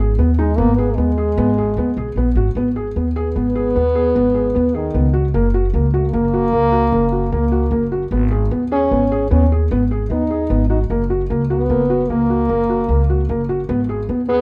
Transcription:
Already playing: G#1
0.18 D#2 B3
0.38 G#3 D#4
0.56 G#1 A#3 B3
0.75 B3 G#4
0.90 A#3
0.95 D#2 G#3 B3
1.18 G#4
1.38 G#1 B3
1.58 G#4
1.77 D#2 B3
1.97 B1 G#4
2.16 A#1 B3
2.35 G#1 F#4
2.55 G#1 B3
2.76 G#4
2.96 D#2 B3
3.15 B3 G#4
3.36 G#1 B3
3.55 G#4
3.76 D#2 B3
3.95 G#4
4.15 G#1 B3
4.35 G#4
4.55 D#2 B3
4.74 D#3 G#4
4.94 C#2 B3
5.13 F#4
5.34 F#1 A#3
5.54 F#4
5.74 C#2 A#3
5.94 A#3 F#4
6.13 F#1 A#3
6.34 F#4
6.53 C#2 A#3
6.72 F#4
6.92 F#1 A#3
7.12 F#4
7.32 C#2 A#3
7.52 F#4
7.71 F#1 A#3
7.92 F#4
8.11 G#1 B3
8.31 G#4
8.51 D#2 B3
8.72 C#4 G#4
8.91 G#1 B3
9.12 G#4
9.31 D#2 B3 C#4
9.52 G#4
9.71 G#1 B3
9.91 G#4
10.10 D#2 B3 D#4
10.30 G#4
10.50 G#1 B3
10.69 D#4 F#4
10.90 F#1 A#3
11.10 F#4
11.30 C#2 A#3
11.49 B3 F#4
11.70 F#1 A#3
11.90 F#4
12.09 C#2 A#3
12.30 F#4
12.49 F#1 A#3
12.70 F#4
12.89 C#2 A#3
13.10 F#4
13.29 F#1 A#3
13.49 F#4
13.69 G#1 B3
13.89 G#4
14.09 D#2 B3
14.28 B3 G#4

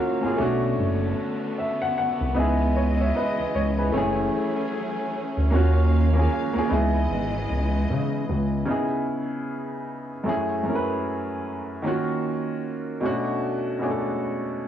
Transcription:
Already playing: D#3 F#3 A#3 C#4 F4 F#4 F5
0.21 B1 A#3 C#4 F4
0.26 G#4
0.36 B1 D3 A3 B3 C#4 D4
0.42 F#4
0.78 F#1
1.58 E5
1.81 F#5
1.98 F#5
2.21 C2
2.34 C#2 C#3 E3 G#3 B3 D#4 E4 D#5
2.39 G#4
2.76 C#5
3.00 C#5 E5
3.16 B4 D#5
3.39 C#2
3.55 C#2 C#5
3.79 G#4 B4
3.92 F#1 F#3 A3 C#4 E4 G#4
3.98 G#4
5.37 D2
5.50 D#2 D#3 F#3 A#3 C#4 F4 F5
5.55 F#4
6.13 A#3 C#4 F4
6.19 G#4
6.53 C#2 A#3 C#4 F4
6.58 G#4
6.69 C#2 C#3 E3 G#3 B3 D#4 E4 D#5
6.74 G#4
7.11 G#1
7.50 C#2
7.90 C#3
8.29 C#2
8.66 C#3 B3 D#4
8.70 E4 G#4
10.24 F#2 A3 C#4 E4
10.29 G#4
10.63 F#2 A3 C#4 E4
10.69 A#4
10.75 B4
11.82 D#3 A#3 C#4 F4
11.87 F#4
13.00 B2 A3 C#4 D4
13.05 F#4
13.79 B2 A3 C#4 D4
13.84 G#4
13.91 A4

